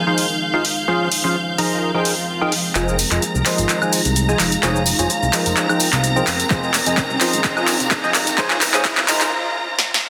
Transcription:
Already playing: ambient pad D#4 G#4 F5, violin section F5 G6
0.07 synth stab F3 D#4 F4 G#4 C5 F5
0.18 open hi-hat
0.54 synth stab D#4 F4 G#4 C5 F5
0.64 ambient pad F3, open hi-hat
0.88 synth stab F3 C#4 F4 G#4 C5 F5
1.12 open hi-hat
1.24 synth stab F3 C#4 F4 G#4 C5 F5
1.58 synth stab F3 D#4 G#4 A#4 C5 A#5, open hi-hat
1.77 ambient pad G#4
1.81 ambient pad C4, swell
1.90 ambient pad A#4
1.94 synth stab F3 D#4 G#4 A#4 C5 G5, ambient pad G5
2.05 open hi-hat
2.41 synth stab F3 D#4 G#4 A#4 C5 G5
2.52 open hi-hat
2.75 analog synth bass F1, synth stab F3 F4 G#4 C5 D#5 G#5, ambient pad D#4, violin section A#5 A#6, clap, closed hi-hat, tambourine, riser, cabasa
2.88 cabasa
2.99 open hi-hat, tambourine, cabasa
3.11 analog synth bass F1, synth stab F3 F4 G#4 C5 D#5 G#5, clap, closed hi-hat, tambourine, cabasa
3.22 closed hi-hat, tambourine, cabasa
3.35 analog synth bass C2, cabasa
3.45 synth stab F3 F4 G#4 C5 D#5 C6, clap, open hi-hat, tambourine, cabasa
3.49 ambient pad F5
3.58 analog synth bass G#1, closed hi-hat, tambourine, cabasa
3.69 clap, closed hi-hat, tambourine, cabasa
3.82 synth stab F3 F4 G#4 C5 D#5 G#5, cabasa, high woodblock
3.93 open hi-hat, tambourine, cabasa
4.05 analog synth bass C2, closed hi-hat, tambourine, cabasa
4.16 closed hi-hat, tambourine, cabasa
4.29 synth stab F3 F4 G#4 C5 D#5 G#5, cabasa
4.39 analog synth bass F1, clap, open hi-hat, tambourine, cabasa
4.52 closed hi-hat, tambourine, cabasa
4.62 analog synth bass F1, synth stab F3 F4 G#4 C5 C#5 G#5, clap, closed hi-hat, tambourine, cabasa
4.76 cabasa
4.86 open hi-hat, tambourine, cabasa
4.99 analog synth bass F1, synth stab F3 F4 G#4 C5 C#5 G#5, closed hi-hat, tambourine, cabasa
5.10 closed hi-hat, tambourine, cabasa
5.22 analog synth bass C2, cabasa
5.33 synth stab F3 D#4 G#4 A#4 C5 A#5, ambient pad C4, clap, open hi-hat, tambourine, cabasa
5.46 analog synth bass F1, closed hi-hat, tambourine, cabasa
5.51 ambient pad A#4
5.57 clap, closed hi-hat, tambourine, cabasa
5.69 synth stab F3 D#4 G#4 A#4 C5 G5, cabasa, high woodblock
5.80 open hi-hat, tambourine, cabasa
5.92 analog synth bass C2, clap, closed hi-hat, tambourine, cabasa
6.04 closed hi-hat, tambourine, cabasa
6.16 synth stab F3 D#4 G#4 A#4 C5 G5, cabasa
6.27 analog synth bass F1, clap, open hi-hat, tambourine, cabasa
6.40 closed hi-hat, tambourine, cabasa
6.50 analog synth bass F1, synth stab F3 F4 G#4 C5 D#5 G#5, ambient pad D#4, kick, clap, closed hi-hat, tambourine, cabasa
6.63 cabasa
6.74 clap, open hi-hat, tambourine, cabasa
6.86 analog synth bass F1, synth stab F3 F4 G#4 C5 D#5 G#5, ambient pad F5, closed hi-hat, tambourine, cabasa
6.97 kick, clap, closed hi-hat, tambourine, cabasa
7.10 analog synth bass C2, ambient pad G#4, cabasa
7.21 synth stab F3 F4 G#4 C5 D#5 C6, clap, open hi-hat, tambourine, cabasa
7.33 analog synth bass G#1, closed hi-hat, tambourine, cabasa
7.44 kick, clap, closed hi-hat, tambourine, cabasa
7.57 synth stab F3 F4 G#4 C5 D#5 G#5, cabasa, high woodblock
7.68 clap, open hi-hat, tambourine, cabasa
7.80 analog synth bass C2, closed hi-hat, tambourine, cabasa
7.91 kick, clap, closed hi-hat, tambourine, cabasa
8.04 synth stab F3 F4 G#4 C5 D#5 G#5, cabasa
8.14 analog synth bass F1, clap, open hi-hat, tambourine, cabasa
8.27 closed hi-hat, tambourine, cabasa
8.38 analog synth bass F1, synth stab F3 F4 G#4 C5 C#5 G#5, kick, clap, closed hi-hat, tambourine, cabasa
8.50 clap, cabasa
8.61 clap, open hi-hat, tambourine, cabasa
8.74 analog synth bass F1, synth stab F3 F4 G#4 C5 C#5 G#5, clap, closed hi-hat, tambourine, cabasa
8.85 kick, clap, closed hi-hat, tambourine, cabasa
8.97 analog synth bass C2, clap, cabasa
9.08 synth stab F3 D#4 G#4 A#4 C5 A#5, clap, open hi-hat, tambourine, cabasa
9.21 analog synth bass F1, clap, closed hi-hat, tambourine, cabasa
9.79 snare
9.94 snare

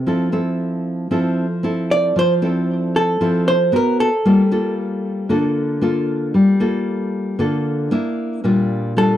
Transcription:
0.06 nylon-string guitar F3 C4 E4 A4
0.32 nylon-string guitar C4 E4 A4
1.11 nylon-string guitar F3 C4 E4 A4
1.63 nylon-string guitar C4 E4 A4
1.91 hollow-body jazz guitar D5
2.16 nylon-string guitar F3, hollow-body jazz guitar C5
2.42 nylon-string guitar C4 E4 A4
2.96 hollow-body jazz guitar A4
3.21 nylon-string guitar F3 C4 E4 A4
3.48 hollow-body jazz guitar C5
3.72 nylon-string guitar B3 F#4 A#4, hollow-body jazz guitar A#4
4.00 hollow-body jazz guitar A4
4.25 nylon-string guitar G3 A#3 F4 A4
4.51 nylon-string guitar A#3 F4 A4
5.29 nylon-string guitar D3 A#3 F4 A4
5.82 nylon-string guitar A#3 F4 A4
6.34 nylon-string guitar G3
6.60 nylon-string guitar A#3 F4 A4
7.39 nylon-string guitar D3 A#3 F4 A4
7.91 nylon-string guitar A#3 D4 E4
8.44 nylon-string guitar A#2 G3 D4 F4
8.97 nylon-string guitar G3 D4 F4, hollow-body jazz guitar A4

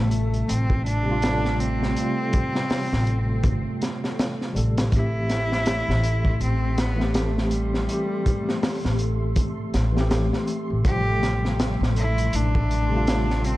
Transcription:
Already playing: upright bass A1, tine electric piano C3 G3 A3 F4, cello A3, analog synth pad A3 A4
0.11 closed hi-hat
0.34 closed hi-hat
0.48 upright bass A1, cello C4, closed hi-hat
0.70 kick
0.86 cello D4, closed hi-hat
1.03 tine electric piano C3 G3
1.09 tine electric piano A3 F4
1.22 snare, closed hi-hat
1.45 snare
1.60 cello C4, closed hi-hat
1.83 snare
1.92 tine electric piano C3 G3
1.96 tine electric piano A3 F4, closed hi-hat
2.33 kick, closed hi-hat
2.55 snare
2.70 snare, open hi-hat
2.93 upright bass A1, snare
3.07 closed hi-hat
3.43 upright bass G1, kick, closed hi-hat
3.82 snare, closed hi-hat
4.04 snare
4.19 snare, closed hi-hat
4.41 snare
4.54 upright bass A1, tine electric piano C3 G3 A3, closed hi-hat
4.58 tine electric piano A4
4.78 snare, closed hi-hat
4.88 tine electric piano E3 A3, analog synth pad A4, closed hi-hat
4.92 analog synth pad A3, synth texture A3 C6, tine electric piano C4, cello E4, kick
4.97 tine electric piano G4
5.29 snare, closed hi-hat
5.52 snare
5.66 snare, closed hi-hat
5.88 upright bass A1, snare
6.03 closed hi-hat
6.25 kick
6.40 upright bass A1, cello C4, closed hi-hat
6.78 cello B3, snare, closed hi-hat
6.96 tine electric piano E3 A3
7.00 tine electric piano C4 G4, snare
7.14 cello A3, snare, closed hi-hat
7.38 snare
7.51 cello G3, closed hi-hat
7.74 snare
7.85 tine electric piano E3 A3, closed hi-hat
7.91 tine electric piano C4 G4
8.26 kick, closed hi-hat
8.49 snare
8.63 snare, open hi-hat
8.84 upright bass A1, snare
8.99 closed hi-hat
9.36 kick, closed hi-hat
9.74 upright bass A1, snare, closed hi-hat
9.92 tine electric piano E3 A3
9.97 tine electric piano C4 G4, snare
10.11 snare, closed hi-hat
10.33 snare
10.47 closed hi-hat
10.70 upright bass A1
10.81 tine electric piano C3 G3, kick, closed hi-hat
10.86 tine electric piano F3 A3, cello G4
11.23 snare, closed hi-hat
11.45 snare
11.60 snare, closed hi-hat
11.81 upright bass A1, snare
11.96 cello E4, closed hi-hat
12.18 closed hi-hat
12.33 upright bass A1, cello D4, closed hi-hat
12.55 kick
12.71 closed hi-hat
12.88 tine electric piano C3 G3
12.93 tine electric piano A3 F4
13.07 snare, closed hi-hat
13.30 snare
13.44 cello C4, closed hi-hat

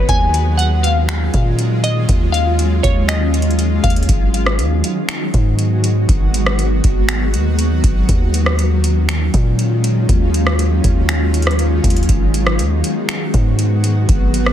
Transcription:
Already playing: ambient pad D#3
0.09 808-style bass D#2, ambient pad F#3 G#3 C#4 F4, synth pluck G#5, kick, closed hi-hat
0.34 closed hi-hat
0.57 synth pluck F#5, closed hi-hat
0.83 synth pluck F5, closed hi-hat
1.09 finger snap, closed hi-hat
1.34 808-style bass A#2, kick, closed hi-hat
1.59 closed hi-hat
1.84 synth pluck D#5, closed hi-hat
2.09 808-style bass D#2, kick, closed hi-hat
2.32 synth pluck F5, closed hi-hat
2.59 closed hi-hat
2.83 808-style bass D#2, synth pluck C#5, kick, closed hi-hat
3.08 synth pluck D#5, finger snap, closed hi-hat
3.34 closed hi-hat
3.42 closed hi-hat
3.51 closed hi-hat
3.59 closed hi-hat
3.84 808-style bass D#2, synth pluck F5, kick, closed hi-hat
3.90 closed hi-hat
3.96 closed hi-hat
4.03 closed hi-hat
4.09 808-style bass G#1, ambient pad D#3 F#3 G#3 B3 F#4, kick, closed hi-hat
4.34 closed hi-hat
4.46 cross-stick
4.59 808-style bass D#2, closed hi-hat
4.84 closed hi-hat
5.09 finger snap, closed hi-hat
5.34 808-style bass G#2, kick, closed hi-hat
5.59 closed hi-hat
5.84 closed hi-hat
6.09 808-style bass G#1, kick, closed hi-hat
6.34 closed hi-hat
6.46 cross-stick
6.59 closed hi-hat
6.84 808-style bass G#1, kick, closed hi-hat
7.09 finger snap, closed hi-hat
7.34 808-style bass D#2, closed hi-hat
7.59 closed hi-hat
7.84 808-style bass G#1, kick, closed hi-hat
8.09 808-style bass D#2, ambient pad G#3 C#4 F4, kick, closed hi-hat
8.34 closed hi-hat
8.46 cross-stick
8.59 closed hi-hat
8.84 closed hi-hat
9.09 finger snap, closed hi-hat
9.34 808-style bass A#2, kick, closed hi-hat
9.59 closed hi-hat
9.84 closed hi-hat
10.09 808-style bass D#2, kick, closed hi-hat
10.34 closed hi-hat
10.47 cross-stick
10.59 closed hi-hat
10.84 808-style bass D#2, kick, closed hi-hat
11.09 finger snap, closed hi-hat
11.34 closed hi-hat
11.42 closed hi-hat
11.47 cross-stick, closed hi-hat
11.59 closed hi-hat
11.84 808-style bass D#2, kick, closed hi-hat
11.90 closed hi-hat
11.96 closed hi-hat
12.03 closed hi-hat
12.09 808-style bass G#1, ambient pad F#3 B3 F#4, kick, closed hi-hat
12.34 closed hi-hat
12.47 cross-stick
12.59 808-style bass D#2, closed hi-hat
12.84 closed hi-hat
13.09 finger snap, closed hi-hat
13.34 808-style bass G#2, kick, closed hi-hat
13.59 closed hi-hat
13.84 closed hi-hat
14.09 808-style bass G#1, kick, closed hi-hat
14.34 closed hi-hat
14.46 cross-stick

